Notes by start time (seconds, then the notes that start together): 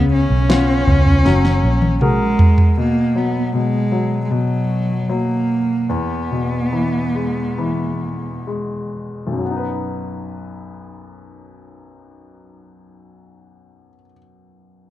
Already playing: C#2 C#3
0.13 C#4
0.30 B1
0.49 B3 C#4 F4, snare
0.87 C#2, floor tom
1.06 floor tom
1.25 F#1 F#3, snare
1.45 snare
1.63 A#1
1.82 high tom
2.01 G#3 F#4 G#4 A#4, mid tom
2.39 floor tom
2.58 floor tom
2.77 B2 A#3
3.15 F#3 B3
3.54 B2 G#3
3.92 F#3
4.25 G#3
4.31 B2 F#3
5.09 F#3 A#3
5.89 E2 B3
6.31 B2
6.73 E3
7.15 G#3
7.58 E3
8.47 G#3
9.27 B1
9.33 F#2
9.39 F#3
9.45 B3
9.51 D#4
9.57 B4